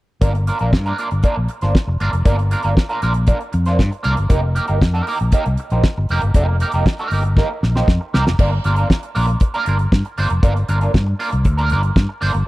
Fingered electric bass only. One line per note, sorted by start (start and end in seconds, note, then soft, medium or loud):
0.22 0.49 G1 medium
0.61 0.75 A#1 medium
0.73 0.91 G2 loud
1.12 1.21 G1 medium
1.37 1.46 A#1 medium
1.62 1.72 G1 medium
1.87 1.97 F1 medium
2.01 2.10 G1 medium
2.13 2.22 F1 medium
2.26 2.54 G1 medium
2.65 2.74 G1 medium
3.03 3.30 A#1 medium
3.54 3.80 F2 medium
3.80 3.89 G2 medium
4.05 4.14 C2 medium
4.18 4.27 G1 medium
4.30 4.58 F1 medium
4.69 4.78 G1 medium
4.82 5.00 F2 medium
5.21 5.30 A#1 medium
5.46 5.55 C2 medium
5.72 5.81 A#1 medium
5.98 6.06 G1 medium
6.10 6.19 F1 medium
6.23 6.32 G1 medium
6.35 6.62 F1 loud
6.74 6.83 F1 medium
7.12 7.39 G1 medium
7.63 7.81 A#1 medium
7.88 7.97 F2 medium
8.15 8.24 C2 medium
8.27 8.36 F1 medium
8.39 8.58 G1 medium
8.65 8.83 G1 loud
9.16 9.34 A#1 medium
9.67 9.85 G1 medium
9.92 10.01 G2 medium
10.18 10.27 G1 medium
10.31 10.40 F1 medium
10.43 10.62 G1 medium
10.69 10.87 G1 loud
10.95 11.13 G2 medium
11.33 11.45 C2 medium
11.45 11.73 D2 medium
11.71 11.89 G1 medium
11.96 12.05 G2 medium
12.22 12.31 G1 medium
12.35 12.44 G1 medium